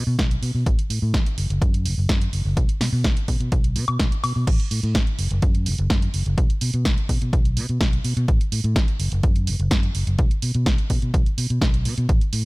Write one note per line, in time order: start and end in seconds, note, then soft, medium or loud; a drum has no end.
0.07 0.15 B2 medium
0.19 0.35 B1 medium
0.19 kick loud
0.19 snare loud
0.19 closed hi-hat medium
0.31 closed hi-hat medium
0.42 0.51 B2 medium
0.42 open hi-hat medium
0.55 0.63 B2 medium
0.66 0.75 A1 loud
0.66 kick loud
0.66 closed hi-hat medium
0.79 closed hi-hat medium
0.90 0.99 A2 medium
0.90 open hi-hat loud
1.02 1.15 A2 medium
1.14 1.22 A1 medium
1.14 kick loud
1.14 snare loud
1.14 closed hi-hat medium
1.26 closed hi-hat medium
1.38 1.46 F#1 loud
1.38 open hi-hat loud
1.50 1.58 F#1 medium
1.50 closed hi-hat soft
1.62 1.87 F#2 medium
1.62 kick loud
1.62 closed hi-hat medium
1.74 closed hi-hat medium
1.85 1.94 F#1 medium
1.85 open hi-hat loud
1.98 2.06 F#1 medium
2.09 2.26 F#2 medium
2.09 kick loud
2.09 snare loud
2.09 closed hi-hat medium
2.21 closed hi-hat medium
2.33 2.42 F#1 medium
2.33 open hi-hat loud
2.45 2.53 F#1 medium
2.57 kick loud
2.57 closed hi-hat medium
2.69 closed hi-hat medium
2.81 2.89 B2 medium
2.81 snare medium
2.81 open hi-hat loud
2.93 3.06 B2 medium
3.04 3.13 B1 medium
3.04 kick loud
3.04 snare loud
3.04 closed hi-hat medium
3.17 closed hi-hat medium
3.28 3.37 B2 loud
3.28 kick medium
3.28 open hi-hat loud
3.40 3.48 B2 medium
3.40 closed hi-hat soft
3.52 3.77 B1 medium
3.52 kick loud
3.52 closed hi-hat medium
3.64 closed hi-hat medium
3.76 3.84 B2 medium
3.76 open hi-hat loud
3.88 3.96 B2 medium
3.88 closed hi-hat soft
3.88 high woodblock medium
3.99 4.08 B1 medium
3.99 kick loud
3.99 snare loud
3.99 closed hi-hat medium
4.12 closed hi-hat medium
4.24 4.32 B2 medium
4.24 open hi-hat medium
4.24 high woodblock medium
4.36 4.44 B2 medium
4.47 4.56 A1 loud
4.47 kick loud
4.47 closed hi-hat medium
4.47 crash loud
4.60 closed hi-hat soft
4.71 4.80 A2 medium
4.71 open hi-hat loud
4.83 4.96 A2 medium
4.83 closed hi-hat soft
4.95 5.03 A1 medium
4.95 kick loud
4.95 snare loud
4.95 closed hi-hat medium
5.07 closed hi-hat soft
5.19 5.27 F#1 loud
5.19 open hi-hat loud
5.31 5.39 F#1 medium
5.31 closed hi-hat soft
5.42 5.68 F#2 medium
5.42 kick loud
5.42 closed hi-hat medium
5.55 closed hi-hat soft
5.66 5.75 F#1 medium
5.66 open hi-hat loud
5.78 5.87 F#1 medium
5.78 closed hi-hat soft
5.90 6.07 F#2 medium
5.90 kick loud
5.90 snare loud
5.90 closed hi-hat medium
6.02 closed hi-hat soft
6.14 6.23 F#1 medium
6.14 open hi-hat loud
6.26 6.34 F#1 medium
6.26 closed hi-hat soft
6.38 kick loud
6.38 closed hi-hat medium
6.50 closed hi-hat soft
6.61 6.70 B2 medium
6.61 open hi-hat loud
6.74 6.87 B2 medium
6.74 closed hi-hat soft
6.85 6.94 B1 medium
6.85 kick loud
6.85 snare loud
6.85 closed hi-hat medium
6.98 closed hi-hat soft
7.09 7.18 B2 loud
7.09 kick medium
7.09 open hi-hat loud
7.22 7.30 B2 medium
7.22 closed hi-hat soft
7.33 7.59 B1 loud
7.33 kick loud
7.33 closed hi-hat medium
7.45 closed hi-hat soft
7.57 7.66 B2 medium
7.57 open hi-hat loud
7.69 7.77 B2 medium
7.69 closed hi-hat soft
7.81 7.97 B1 medium
7.81 kick loud
7.81 snare loud
7.81 closed hi-hat medium
7.93 closed hi-hat soft
8.04 8.13 B2 medium
8.04 open hi-hat loud
8.17 8.25 B2 medium
8.17 closed hi-hat soft
8.28 8.37 A1 loud
8.28 kick loud
8.28 closed hi-hat medium
8.41 closed hi-hat soft
8.52 8.61 A2 medium
8.52 open hi-hat loud
8.64 8.77 A2 loud
8.64 closed hi-hat soft
8.76 8.84 A1 medium
8.76 kick loud
8.76 snare loud
8.76 closed hi-hat medium
8.88 closed hi-hat soft
9.00 9.08 F#1 loud
9.00 open hi-hat loud
9.12 9.20 F#1 medium
9.12 closed hi-hat soft
9.23 9.49 F#2 loud
9.23 kick loud
9.23 closed hi-hat medium
9.36 closed hi-hat soft
9.47 9.56 F#1 medium
9.47 open hi-hat loud
9.59 9.68 F#1 medium
9.59 closed hi-hat soft
9.71 9.88 F#2 medium
9.71 kick loud
9.71 snare loud
9.71 closed hi-hat medium
9.83 closed hi-hat soft
9.95 10.03 F#1 loud
9.95 open hi-hat loud
10.07 10.15 F#1 medium
10.07 closed hi-hat soft
10.19 kick loud
10.19 closed hi-hat medium
10.31 closed hi-hat soft
10.42 10.51 B2 medium
10.42 open hi-hat loud
10.54 10.68 B2 medium
10.54 closed hi-hat soft
10.66 10.75 B1 medium
10.66 kick loud
10.66 snare loud
10.66 closed hi-hat medium
10.78 closed hi-hat soft
10.90 10.99 B2 loud
10.90 kick medium
10.90 open hi-hat loud
11.02 11.10 B2 medium
11.02 closed hi-hat soft
11.14 11.22 B1 loud
11.14 kick loud
11.14 closed hi-hat medium
11.26 closed hi-hat soft
11.38 11.46 B2 medium
11.38 open hi-hat loud
11.50 11.58 B2 medium
11.50 closed hi-hat soft
11.61 11.87 B1 medium
11.61 kick loud
11.61 snare loud
11.61 closed hi-hat medium
11.74 closed hi-hat soft
11.85 11.94 B2 medium
11.85 open hi-hat loud
11.98 12.06 B2 loud
11.98 closed hi-hat soft
12.09 12.18 A1 loud
12.09 kick loud
12.09 closed hi-hat medium
12.21 closed hi-hat soft
12.33 12.41 A2 medium
12.33 open hi-hat loud